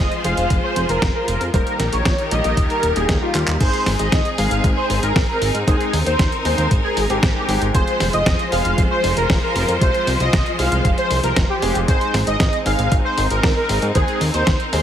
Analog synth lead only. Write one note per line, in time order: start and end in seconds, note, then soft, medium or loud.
0.00 0.16 D#5 loud
0.25 0.55 F5 medium
0.64 0.83 C5 medium
0.89 1.09 A#4 medium
1.15 1.45 A#4 loud
1.54 1.84 A#4 loud
1.93 2.23 C#5 loud
2.31 2.61 D#5 medium
2.70 2.90 A#4 medium
2.96 3.16 G#4 medium
3.22 3.52 F4 loud
3.61 3.91 C5 loud
3.99 4.29 D#5 loud
4.38 4.68 F5 medium
4.77 4.97 C5 medium
5.03 5.23 A#4 medium
5.29 5.59 A#4 loud
5.67 5.97 G#4 loud
6.06 6.36 C5 loud
6.45 6.75 C5 loud
6.84 7.04 G#4 medium
7.10 7.30 G4 medium
7.36 7.66 G4 loud
7.75 8.04 C5 loud
8.13 8.43 D#5 loud
8.52 8.82 F5 medium
8.91 9.11 C5 medium
9.17 9.37 A#4 medium
9.43 9.73 A#4 loud
9.82 10.12 C5 loud
10.21 10.50 D#5 loud
10.59 10.89 F5 medium
10.98 11.18 C5 medium
11.24 11.44 A#4 medium
11.50 11.80 G4 loud
11.88 12.18 C5 loud
12.27 12.57 D#5 loud
12.66 12.96 F5 loud
13.05 13.25 C5 loud
13.31 13.51 A#4 medium
13.56 13.86 A#4 loud
13.95 14.25 G#4 loud
14.34 14.64 C5 loud
14.73 14.82 C5 loud